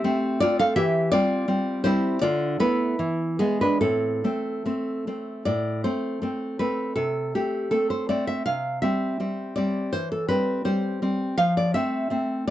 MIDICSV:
0, 0, Header, 1, 2, 480
1, 0, Start_track
1, 0, Key_signature, 0, "minor"
1, 0, Tempo, 723764
1, 509, Time_signature, 2, 2, 24, 8
1, 1472, Tempo, 761421
1, 1952, Tempo, 825309
1, 3392, Tempo, 755668
1, 3872, Tempo, 744417
1, 6272, Tempo, 722892
1, 7977, End_track
2, 0, Start_track
2, 0, Title_t, "Nylon-string guitar"
2, 0, Program_c, 0, 24
2, 0, Note_on_c, 0, 67, 83
2, 0, Note_on_c, 0, 76, 115
2, 28, Note_on_c, 0, 57, 62
2, 31, Note_on_c, 0, 60, 69
2, 245, Note_off_c, 0, 67, 0
2, 247, Note_off_c, 0, 76, 0
2, 268, Note_on_c, 0, 74, 109
2, 270, Note_off_c, 0, 57, 0
2, 271, Note_off_c, 0, 60, 0
2, 276, Note_on_c, 0, 57, 60
2, 279, Note_on_c, 0, 60, 69
2, 282, Note_on_c, 0, 65, 84
2, 387, Note_off_c, 0, 65, 0
2, 389, Note_off_c, 0, 74, 0
2, 394, Note_on_c, 0, 77, 109
2, 398, Note_on_c, 0, 69, 80
2, 489, Note_off_c, 0, 57, 0
2, 489, Note_off_c, 0, 60, 0
2, 501, Note_off_c, 0, 77, 0
2, 503, Note_on_c, 0, 52, 86
2, 503, Note_on_c, 0, 76, 116
2, 505, Note_off_c, 0, 69, 0
2, 509, Note_on_c, 0, 67, 88
2, 731, Note_off_c, 0, 67, 0
2, 735, Note_off_c, 0, 76, 0
2, 738, Note_off_c, 0, 52, 0
2, 740, Note_on_c, 0, 74, 116
2, 744, Note_on_c, 0, 55, 60
2, 748, Note_on_c, 0, 60, 69
2, 749, Note_on_c, 0, 65, 85
2, 972, Note_off_c, 0, 55, 0
2, 976, Note_off_c, 0, 60, 0
2, 980, Note_on_c, 0, 55, 60
2, 984, Note_on_c, 0, 60, 65
2, 1203, Note_off_c, 0, 65, 0
2, 1206, Note_off_c, 0, 74, 0
2, 1219, Note_off_c, 0, 60, 0
2, 1219, Note_on_c, 0, 72, 101
2, 1220, Note_off_c, 0, 55, 0
2, 1226, Note_on_c, 0, 60, 65
2, 1229, Note_on_c, 0, 55, 56
2, 1231, Note_on_c, 0, 64, 72
2, 1447, Note_off_c, 0, 55, 0
2, 1447, Note_off_c, 0, 60, 0
2, 1456, Note_off_c, 0, 64, 0
2, 1458, Note_off_c, 0, 72, 0
2, 1469, Note_on_c, 0, 74, 98
2, 1472, Note_on_c, 0, 50, 76
2, 1478, Note_on_c, 0, 65, 84
2, 1695, Note_off_c, 0, 65, 0
2, 1697, Note_off_c, 0, 74, 0
2, 1701, Note_off_c, 0, 50, 0
2, 1709, Note_on_c, 0, 57, 61
2, 1712, Note_on_c, 0, 59, 65
2, 1713, Note_on_c, 0, 71, 99
2, 1716, Note_on_c, 0, 64, 76
2, 1929, Note_off_c, 0, 59, 0
2, 1930, Note_off_c, 0, 57, 0
2, 1958, Note_on_c, 0, 52, 71
2, 2170, Note_off_c, 0, 64, 0
2, 2172, Note_off_c, 0, 71, 0
2, 2185, Note_off_c, 0, 52, 0
2, 2191, Note_on_c, 0, 68, 77
2, 2193, Note_on_c, 0, 56, 49
2, 2196, Note_on_c, 0, 59, 62
2, 2307, Note_off_c, 0, 59, 0
2, 2313, Note_off_c, 0, 68, 0
2, 2319, Note_on_c, 0, 71, 83
2, 2323, Note_on_c, 0, 62, 64
2, 2415, Note_off_c, 0, 56, 0
2, 2431, Note_off_c, 0, 71, 0
2, 2433, Note_off_c, 0, 62, 0
2, 2433, Note_on_c, 0, 45, 65
2, 2433, Note_on_c, 0, 69, 73
2, 2438, Note_on_c, 0, 60, 58
2, 2672, Note_off_c, 0, 45, 0
2, 2682, Note_off_c, 0, 60, 0
2, 2686, Note_on_c, 0, 57, 49
2, 2689, Note_on_c, 0, 60, 57
2, 2919, Note_off_c, 0, 57, 0
2, 2923, Note_off_c, 0, 60, 0
2, 2926, Note_on_c, 0, 57, 45
2, 2930, Note_on_c, 0, 60, 51
2, 3136, Note_off_c, 0, 69, 0
2, 3161, Note_off_c, 0, 57, 0
2, 3164, Note_off_c, 0, 60, 0
2, 3168, Note_on_c, 0, 57, 42
2, 3171, Note_on_c, 0, 60, 48
2, 3373, Note_off_c, 0, 57, 0
2, 3375, Note_off_c, 0, 60, 0
2, 3390, Note_on_c, 0, 74, 82
2, 3396, Note_on_c, 0, 45, 57
2, 3622, Note_off_c, 0, 74, 0
2, 3628, Note_off_c, 0, 45, 0
2, 3636, Note_on_c, 0, 72, 69
2, 3639, Note_on_c, 0, 57, 45
2, 3643, Note_on_c, 0, 60, 50
2, 3867, Note_off_c, 0, 57, 0
2, 3875, Note_off_c, 0, 60, 0
2, 3875, Note_on_c, 0, 57, 44
2, 3882, Note_on_c, 0, 60, 44
2, 4096, Note_off_c, 0, 72, 0
2, 4114, Note_off_c, 0, 57, 0
2, 4116, Note_off_c, 0, 60, 0
2, 4117, Note_on_c, 0, 71, 69
2, 4120, Note_on_c, 0, 57, 41
2, 4125, Note_on_c, 0, 60, 46
2, 4335, Note_off_c, 0, 57, 0
2, 4335, Note_off_c, 0, 60, 0
2, 4346, Note_off_c, 0, 71, 0
2, 4351, Note_on_c, 0, 69, 74
2, 4356, Note_on_c, 0, 48, 55
2, 4585, Note_off_c, 0, 69, 0
2, 4590, Note_off_c, 0, 48, 0
2, 4606, Note_on_c, 0, 67, 72
2, 4608, Note_on_c, 0, 57, 46
2, 4611, Note_on_c, 0, 60, 47
2, 4834, Note_off_c, 0, 57, 0
2, 4834, Note_off_c, 0, 67, 0
2, 4837, Note_on_c, 0, 69, 70
2, 4839, Note_off_c, 0, 60, 0
2, 4842, Note_on_c, 0, 57, 44
2, 4846, Note_on_c, 0, 60, 45
2, 4958, Note_off_c, 0, 69, 0
2, 4961, Note_on_c, 0, 72, 61
2, 5077, Note_off_c, 0, 57, 0
2, 5079, Note_off_c, 0, 72, 0
2, 5082, Note_on_c, 0, 74, 75
2, 5083, Note_off_c, 0, 60, 0
2, 5085, Note_on_c, 0, 57, 45
2, 5091, Note_on_c, 0, 60, 46
2, 5199, Note_off_c, 0, 74, 0
2, 5201, Note_on_c, 0, 76, 75
2, 5295, Note_off_c, 0, 57, 0
2, 5299, Note_off_c, 0, 60, 0
2, 5316, Note_off_c, 0, 76, 0
2, 5319, Note_on_c, 0, 77, 83
2, 5323, Note_on_c, 0, 48, 55
2, 5547, Note_off_c, 0, 77, 0
2, 5551, Note_off_c, 0, 48, 0
2, 5553, Note_on_c, 0, 76, 69
2, 5556, Note_on_c, 0, 55, 47
2, 5561, Note_on_c, 0, 60, 50
2, 5789, Note_off_c, 0, 55, 0
2, 5792, Note_off_c, 0, 60, 0
2, 5796, Note_on_c, 0, 55, 43
2, 5800, Note_on_c, 0, 60, 46
2, 6016, Note_off_c, 0, 76, 0
2, 6028, Note_on_c, 0, 74, 76
2, 6030, Note_off_c, 0, 55, 0
2, 6031, Note_off_c, 0, 60, 0
2, 6038, Note_on_c, 0, 60, 46
2, 6040, Note_on_c, 0, 55, 44
2, 6251, Note_off_c, 0, 55, 0
2, 6251, Note_off_c, 0, 60, 0
2, 6259, Note_off_c, 0, 74, 0
2, 6266, Note_on_c, 0, 72, 81
2, 6273, Note_on_c, 0, 52, 58
2, 6390, Note_off_c, 0, 72, 0
2, 6393, Note_on_c, 0, 69, 70
2, 6502, Note_off_c, 0, 69, 0
2, 6505, Note_on_c, 0, 55, 46
2, 6505, Note_on_c, 0, 71, 82
2, 6507, Note_off_c, 0, 52, 0
2, 6511, Note_on_c, 0, 60, 54
2, 6738, Note_off_c, 0, 60, 0
2, 6739, Note_off_c, 0, 55, 0
2, 6739, Note_off_c, 0, 71, 0
2, 6745, Note_on_c, 0, 60, 47
2, 6747, Note_on_c, 0, 72, 75
2, 6748, Note_on_c, 0, 55, 43
2, 6985, Note_off_c, 0, 55, 0
2, 6988, Note_off_c, 0, 60, 0
2, 6993, Note_on_c, 0, 55, 46
2, 6996, Note_on_c, 0, 60, 50
2, 7210, Note_off_c, 0, 55, 0
2, 7211, Note_off_c, 0, 72, 0
2, 7212, Note_off_c, 0, 60, 0
2, 7229, Note_on_c, 0, 77, 95
2, 7232, Note_on_c, 0, 53, 63
2, 7352, Note_off_c, 0, 77, 0
2, 7359, Note_on_c, 0, 74, 80
2, 7465, Note_off_c, 0, 53, 0
2, 7469, Note_off_c, 0, 74, 0
2, 7472, Note_on_c, 0, 76, 88
2, 7477, Note_on_c, 0, 57, 51
2, 7480, Note_on_c, 0, 60, 54
2, 7704, Note_off_c, 0, 57, 0
2, 7706, Note_off_c, 0, 60, 0
2, 7711, Note_on_c, 0, 57, 46
2, 7716, Note_on_c, 0, 60, 50
2, 7934, Note_off_c, 0, 76, 0
2, 7951, Note_off_c, 0, 60, 0
2, 7953, Note_off_c, 0, 57, 0
2, 7977, End_track
0, 0, End_of_file